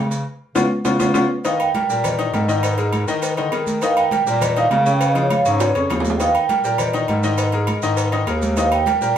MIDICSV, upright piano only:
0, 0, Header, 1, 2, 480
1, 0, Start_track
1, 0, Key_signature, -3, "major"
1, 0, Tempo, 296736
1, 422, Time_signature, 4, 2, 24, 8
1, 14848, End_track
2, 0, Start_track
2, 0, Title_t, "Upright piano"
2, 0, Program_c, 0, 0
2, 892, Note_on_c, 0, 59, 107
2, 895, Note_on_c, 0, 65, 100
2, 898, Note_on_c, 0, 61, 94
2, 1049, Note_off_c, 0, 59, 0
2, 1051, Note_off_c, 0, 65, 0
2, 1053, Note_off_c, 0, 61, 0
2, 1371, Note_on_c, 0, 59, 89
2, 1374, Note_on_c, 0, 61, 97
2, 1377, Note_on_c, 0, 65, 92
2, 1529, Note_off_c, 0, 59, 0
2, 1530, Note_off_c, 0, 61, 0
2, 1532, Note_off_c, 0, 65, 0
2, 1609, Note_on_c, 0, 65, 93
2, 1610, Note_on_c, 0, 59, 89
2, 1611, Note_on_c, 0, 61, 96
2, 1767, Note_off_c, 0, 65, 0
2, 1768, Note_off_c, 0, 59, 0
2, 1768, Note_off_c, 0, 61, 0
2, 1842, Note_on_c, 0, 59, 107
2, 1845, Note_on_c, 0, 61, 100
2, 1846, Note_on_c, 0, 65, 102
2, 2003, Note_off_c, 0, 59, 0
2, 2005, Note_off_c, 0, 61, 0
2, 2005, Note_off_c, 0, 65, 0
2, 2339, Note_on_c, 0, 63, 90
2, 2340, Note_on_c, 0, 51, 91
2, 2347, Note_on_c, 0, 75, 90
2, 2733, Note_off_c, 0, 63, 0
2, 2734, Note_off_c, 0, 51, 0
2, 2738, Note_off_c, 0, 75, 0
2, 2825, Note_on_c, 0, 55, 81
2, 2825, Note_on_c, 0, 67, 76
2, 2828, Note_on_c, 0, 70, 84
2, 3019, Note_off_c, 0, 67, 0
2, 3020, Note_off_c, 0, 55, 0
2, 3022, Note_off_c, 0, 70, 0
2, 3068, Note_on_c, 0, 55, 89
2, 3071, Note_on_c, 0, 67, 88
2, 3077, Note_on_c, 0, 70, 81
2, 3458, Note_off_c, 0, 55, 0
2, 3460, Note_off_c, 0, 67, 0
2, 3463, Note_off_c, 0, 70, 0
2, 3534, Note_on_c, 0, 51, 84
2, 3536, Note_on_c, 0, 63, 89
2, 3542, Note_on_c, 0, 75, 81
2, 3733, Note_off_c, 0, 51, 0
2, 3734, Note_off_c, 0, 63, 0
2, 3738, Note_off_c, 0, 75, 0
2, 3772, Note_on_c, 0, 55, 77
2, 3775, Note_on_c, 0, 67, 85
2, 3781, Note_on_c, 0, 70, 79
2, 3972, Note_off_c, 0, 55, 0
2, 3974, Note_off_c, 0, 67, 0
2, 3977, Note_off_c, 0, 70, 0
2, 4013, Note_on_c, 0, 51, 106
2, 4020, Note_on_c, 0, 75, 99
2, 4022, Note_on_c, 0, 63, 94
2, 4409, Note_off_c, 0, 51, 0
2, 4413, Note_off_c, 0, 75, 0
2, 4414, Note_off_c, 0, 63, 0
2, 4490, Note_on_c, 0, 56, 82
2, 4498, Note_on_c, 0, 68, 83
2, 4502, Note_on_c, 0, 70, 81
2, 4887, Note_off_c, 0, 56, 0
2, 4892, Note_off_c, 0, 68, 0
2, 4894, Note_off_c, 0, 70, 0
2, 4977, Note_on_c, 0, 51, 102
2, 4986, Note_on_c, 0, 75, 100
2, 4989, Note_on_c, 0, 63, 98
2, 5371, Note_off_c, 0, 51, 0
2, 5377, Note_off_c, 0, 75, 0
2, 5378, Note_off_c, 0, 63, 0
2, 5461, Note_on_c, 0, 51, 92
2, 5468, Note_on_c, 0, 75, 88
2, 5469, Note_on_c, 0, 63, 86
2, 5657, Note_off_c, 0, 51, 0
2, 5661, Note_off_c, 0, 75, 0
2, 5662, Note_off_c, 0, 63, 0
2, 5704, Note_on_c, 0, 68, 83
2, 5706, Note_on_c, 0, 56, 82
2, 5709, Note_on_c, 0, 70, 70
2, 6096, Note_off_c, 0, 68, 0
2, 6097, Note_off_c, 0, 56, 0
2, 6099, Note_off_c, 0, 70, 0
2, 6190, Note_on_c, 0, 63, 83
2, 6192, Note_on_c, 0, 51, 85
2, 6197, Note_on_c, 0, 75, 91
2, 6579, Note_off_c, 0, 63, 0
2, 6580, Note_off_c, 0, 51, 0
2, 6583, Note_off_c, 0, 75, 0
2, 6654, Note_on_c, 0, 55, 77
2, 6662, Note_on_c, 0, 67, 80
2, 6665, Note_on_c, 0, 70, 79
2, 6853, Note_off_c, 0, 55, 0
2, 6857, Note_off_c, 0, 67, 0
2, 6859, Note_off_c, 0, 70, 0
2, 6900, Note_on_c, 0, 55, 91
2, 6904, Note_on_c, 0, 67, 93
2, 6905, Note_on_c, 0, 70, 85
2, 7293, Note_off_c, 0, 55, 0
2, 7296, Note_off_c, 0, 67, 0
2, 7296, Note_off_c, 0, 70, 0
2, 7383, Note_on_c, 0, 51, 82
2, 7389, Note_on_c, 0, 63, 92
2, 7396, Note_on_c, 0, 75, 89
2, 7579, Note_off_c, 0, 51, 0
2, 7582, Note_off_c, 0, 63, 0
2, 7586, Note_off_c, 0, 75, 0
2, 7623, Note_on_c, 0, 55, 72
2, 7625, Note_on_c, 0, 67, 78
2, 7628, Note_on_c, 0, 70, 86
2, 7818, Note_off_c, 0, 55, 0
2, 7820, Note_off_c, 0, 67, 0
2, 7822, Note_off_c, 0, 70, 0
2, 7861, Note_on_c, 0, 49, 99
2, 7862, Note_on_c, 0, 61, 94
2, 7863, Note_on_c, 0, 73, 88
2, 8254, Note_off_c, 0, 49, 0
2, 8255, Note_off_c, 0, 61, 0
2, 8255, Note_off_c, 0, 73, 0
2, 8330, Note_on_c, 0, 53, 80
2, 8340, Note_on_c, 0, 65, 81
2, 8345, Note_on_c, 0, 68, 79
2, 8728, Note_off_c, 0, 53, 0
2, 8734, Note_off_c, 0, 65, 0
2, 8737, Note_off_c, 0, 68, 0
2, 8822, Note_on_c, 0, 49, 95
2, 8823, Note_on_c, 0, 61, 88
2, 8828, Note_on_c, 0, 73, 93
2, 9215, Note_off_c, 0, 49, 0
2, 9215, Note_off_c, 0, 61, 0
2, 9219, Note_off_c, 0, 73, 0
2, 9299, Note_on_c, 0, 49, 89
2, 9301, Note_on_c, 0, 61, 91
2, 9302, Note_on_c, 0, 73, 87
2, 9496, Note_off_c, 0, 49, 0
2, 9498, Note_off_c, 0, 61, 0
2, 9498, Note_off_c, 0, 73, 0
2, 9549, Note_on_c, 0, 53, 70
2, 9553, Note_on_c, 0, 65, 74
2, 9556, Note_on_c, 0, 68, 72
2, 9939, Note_off_c, 0, 53, 0
2, 9942, Note_off_c, 0, 65, 0
2, 9943, Note_off_c, 0, 68, 0
2, 10030, Note_on_c, 0, 51, 83
2, 10036, Note_on_c, 0, 75, 81
2, 10038, Note_on_c, 0, 63, 81
2, 10420, Note_off_c, 0, 51, 0
2, 10423, Note_off_c, 0, 75, 0
2, 10424, Note_off_c, 0, 63, 0
2, 10507, Note_on_c, 0, 55, 78
2, 10510, Note_on_c, 0, 67, 71
2, 10516, Note_on_c, 0, 70, 77
2, 10701, Note_off_c, 0, 55, 0
2, 10703, Note_off_c, 0, 67, 0
2, 10707, Note_off_c, 0, 70, 0
2, 10742, Note_on_c, 0, 55, 81
2, 10747, Note_on_c, 0, 67, 90
2, 10757, Note_on_c, 0, 70, 93
2, 11136, Note_off_c, 0, 55, 0
2, 11138, Note_off_c, 0, 67, 0
2, 11144, Note_off_c, 0, 70, 0
2, 11222, Note_on_c, 0, 51, 97
2, 11226, Note_on_c, 0, 63, 96
2, 11238, Note_on_c, 0, 75, 78
2, 11419, Note_off_c, 0, 51, 0
2, 11421, Note_off_c, 0, 63, 0
2, 11428, Note_off_c, 0, 75, 0
2, 11477, Note_on_c, 0, 55, 80
2, 11482, Note_on_c, 0, 67, 77
2, 11483, Note_on_c, 0, 70, 73
2, 11667, Note_off_c, 0, 55, 0
2, 11670, Note_off_c, 0, 67, 0
2, 11671, Note_off_c, 0, 70, 0
2, 11706, Note_on_c, 0, 51, 97
2, 11709, Note_on_c, 0, 63, 100
2, 11713, Note_on_c, 0, 75, 101
2, 12098, Note_off_c, 0, 51, 0
2, 12100, Note_off_c, 0, 63, 0
2, 12102, Note_off_c, 0, 75, 0
2, 12185, Note_on_c, 0, 56, 75
2, 12189, Note_on_c, 0, 68, 82
2, 12194, Note_on_c, 0, 70, 81
2, 12577, Note_off_c, 0, 56, 0
2, 12579, Note_off_c, 0, 68, 0
2, 12582, Note_off_c, 0, 70, 0
2, 12660, Note_on_c, 0, 51, 99
2, 12668, Note_on_c, 0, 63, 100
2, 12672, Note_on_c, 0, 75, 99
2, 13054, Note_off_c, 0, 51, 0
2, 13059, Note_off_c, 0, 63, 0
2, 13061, Note_off_c, 0, 75, 0
2, 13142, Note_on_c, 0, 51, 88
2, 13147, Note_on_c, 0, 75, 92
2, 13150, Note_on_c, 0, 63, 88
2, 13338, Note_off_c, 0, 51, 0
2, 13342, Note_off_c, 0, 75, 0
2, 13343, Note_off_c, 0, 63, 0
2, 13382, Note_on_c, 0, 56, 79
2, 13388, Note_on_c, 0, 68, 84
2, 13392, Note_on_c, 0, 70, 84
2, 13775, Note_off_c, 0, 56, 0
2, 13779, Note_off_c, 0, 68, 0
2, 13781, Note_off_c, 0, 70, 0
2, 13867, Note_on_c, 0, 51, 87
2, 13869, Note_on_c, 0, 63, 91
2, 13878, Note_on_c, 0, 75, 87
2, 14258, Note_off_c, 0, 51, 0
2, 14260, Note_off_c, 0, 63, 0
2, 14265, Note_off_c, 0, 75, 0
2, 14336, Note_on_c, 0, 55, 79
2, 14341, Note_on_c, 0, 67, 77
2, 14345, Note_on_c, 0, 70, 80
2, 14535, Note_off_c, 0, 55, 0
2, 14538, Note_off_c, 0, 67, 0
2, 14540, Note_off_c, 0, 70, 0
2, 14578, Note_on_c, 0, 55, 84
2, 14585, Note_on_c, 0, 67, 93
2, 14591, Note_on_c, 0, 70, 97
2, 14848, Note_off_c, 0, 55, 0
2, 14848, Note_off_c, 0, 67, 0
2, 14848, Note_off_c, 0, 70, 0
2, 14848, End_track
0, 0, End_of_file